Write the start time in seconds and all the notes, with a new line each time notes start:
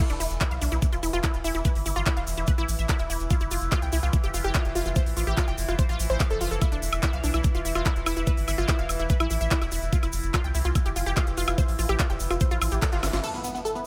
0.00 E3 E4
0.10 E1 D4, closed hi-hat, shaker
0.20 E1 E4, open hi-hat, shaker
0.30 E1, closed hi-hat, shaker
0.41 E4, kick, clap, closed hi-hat, shaker
0.51 B1 F5, closed hi-hat, shaker
0.61 B1 D4, open hi-hat, shaker
0.72 B1 E4, closed hi-hat, shaker
0.82 kick, closed hi-hat, shaker
0.92 E1 F4, closed hi-hat, shaker
1.03 E1 E4, open hi-hat, shaker
1.13 E1 F4, closed hi-hat, shaker
1.24 E4, kick, clap, closed hi-hat, shaker
1.34 E1, closed hi-hat, shaker
1.44 E1 E4, open hi-hat, shaker
1.55 E1 E4, closed hi-hat, shaker
1.65 B4, kick, closed hi-hat, shaker
1.75 G1, open hi-hat, shaker
1.86 G1 E4, open hi-hat, shaker
1.96 G1 F4, closed hi-hat, shaker
2.06 E4, kick, clap, closed hi-hat, shaker
2.17 E1 F5, closed hi-hat, shaker
2.27 E1, open hi-hat, shaker
2.37 E1 E4, closed hi-hat, shaker
2.47 B4, kick, closed hi-hat, shaker
2.58 A1 E4, closed hi-hat, shaker
2.68 A1, open hi-hat, shaker
2.79 A1 E5, closed hi-hat, shaker
2.89 E4, kick, clap, closed hi-hat, shaker
2.99 E1 E4, closed hi-hat, shaker
3.10 E1 E4, open hi-hat, shaker
3.20 E1, closed hi-hat, shaker
3.30 F4, kick, closed hi-hat, shaker
3.40 F1 E4, closed hi-hat, shaker
3.51 F1 F4, open hi-hat, shaker
3.61 F1, closed hi-hat, shaker
3.72 F4, kick, clap, closed hi-hat, shaker
3.82 C2 G5, closed hi-hat, shaker
3.92 C2 E4, open hi-hat, shaker
4.03 C2 F4, closed hi-hat, shaker
4.13 kick, closed hi-hat, shaker
4.24 F1 G4, closed hi-hat, shaker
4.34 F1 F4, open hi-hat, shaker
4.44 F1 G4, closed hi-hat, shaker
4.54 F4, kick, clap, closed hi-hat, shaker
4.65 F1, closed hi-hat, shaker
4.75 F1 F4, open hi-hat, shaker
4.86 F1 F4, closed hi-hat, shaker
4.96 C5, kick, closed hi-hat, shaker
5.06 A1, open hi-hat, shaker
5.17 A1 F4, open hi-hat, shaker
5.27 A1 G4, closed hi-hat, shaker
5.37 F4, kick, clap, closed hi-hat, shaker
5.48 F1 G5, closed hi-hat, shaker
5.58 F1, open hi-hat, shaker
5.68 F1 F4, closed hi-hat, shaker
5.79 C5, kick, closed hi-hat, shaker
5.89 A1 F4, closed hi-hat, shaker
5.99 A1, open hi-hat, shaker
6.10 A1 C5, closed hi-hat, shaker
6.20 F5, kick, clap, closed hi-hat, shaker
6.30 F1 A4, closed hi-hat, shaker
6.41 F1 F4, open hi-hat, shaker
6.51 F1 A4, closed hi-hat, shaker
6.62 E4, kick, closed hi-hat, high woodblock, shaker
6.72 E1 D4, closed hi-hat, shaker
6.82 E1, open hi-hat, shaker
6.93 E1, closed hi-hat, high woodblock, shaker
7.03 E4, kick, clap, closed hi-hat, shaker
7.13 B1 F5, closed hi-hat, shaker
7.24 B1 D4, open hi-hat, shaker
7.34 B1 E4, high woodblock, shaker
7.44 kick, closed hi-hat, shaker
7.55 E1 F4, closed hi-hat, shaker
7.65 E1 E4, open hi-hat, shaker
7.75 E1 F4, closed hi-hat, high woodblock, shaker
7.85 E4, kick, clap, closed hi-hat, shaker
7.96 E1, closed hi-hat, shaker
8.06 E1 E4, open hi-hat, high woodblock, shaker
8.16 E1 E4, closed hi-hat, shaker
8.27 B4, kick, closed hi-hat, shaker
8.37 G1, open hi-hat, shaker
8.48 G1 E4, open hi-hat, high woodblock, shaker
8.58 G1 F4, closed hi-hat, shaker
8.68 E4, kick, clap, closed hi-hat, shaker
8.79 E1 F5, closed hi-hat, shaker
8.89 E1, open hi-hat, high woodblock, shaker
8.99 E1 E4, closed hi-hat, shaker
9.09 B4, kick, closed hi-hat, shaker
9.20 A1 E4, closed hi-hat, high woodblock, shaker
9.30 A1 E4, open hi-hat, shaker
9.41 A1 E5, closed hi-hat, shaker
9.51 E4, kick, clap, closed hi-hat, shaker
9.62 E1 E4, closed hi-hat, high woodblock, shaker
9.71 E1 E4, open hi-hat, shaker
9.82 E1, closed hi-hat, shaker
9.93 F4, kick, closed hi-hat, shaker
10.03 F1 E4, closed hi-hat, high woodblock, shaker
10.13 F1, open hi-hat, shaker
10.23 F1, closed hi-hat, shaker
10.34 F4, kick, clap, closed hi-hat, high woodblock, shaker
10.44 C2 G5, closed hi-hat, shaker
10.55 C2 E4, open hi-hat, shaker
10.64 C2 F4, closed hi-hat, shaker
10.75 kick, closed hi-hat, high woodblock, shaker
10.86 F1 G4, closed hi-hat, shaker
10.96 F1 F4, open hi-hat, shaker
11.06 F1 G4, closed hi-hat, shaker
11.16 F4, kick, clap, closed hi-hat, high woodblock, shaker
11.27 F1, closed hi-hat, shaker
11.37 F1 F4, open hi-hat, shaker
11.48 F1 F4, closed hi-hat, high woodblock, shaker
11.58 C5, kick, closed hi-hat, shaker
11.68 A1, open hi-hat, shaker
11.79 A1 F4, open hi-hat, shaker
11.89 A1 G4, closed hi-hat, high woodblock, shaker
11.99 F4, kick, clap, closed hi-hat, shaker
12.10 F1 G5, closed hi-hat, shaker
12.20 F1, open hi-hat, shaker
12.30 F1 F4, closed hi-hat, high woodblock, shaker
12.40 C5, kick, closed hi-hat, shaker
12.51 A1 F4, closed hi-hat, shaker
12.61 A1 F4, open hi-hat, high woodblock, shaker
12.72 A1 G4, closed hi-hat, shaker
12.82 A4, kick, clap, closed hi-hat, shaker
12.92 G1 F4, closed hi-hat, shaker
13.03 G1 F4, snare, open hi-hat, zap, high woodblock, shaker
13.13 G1 F4, snare, closed hi-hat, shaker
13.24 E3 E4 A4, crash, impact, shaker
13.34 B3, shaker
13.44 B3, shaker
13.55 B3, shaker
13.65 A4, shaker
13.75 B3, shaker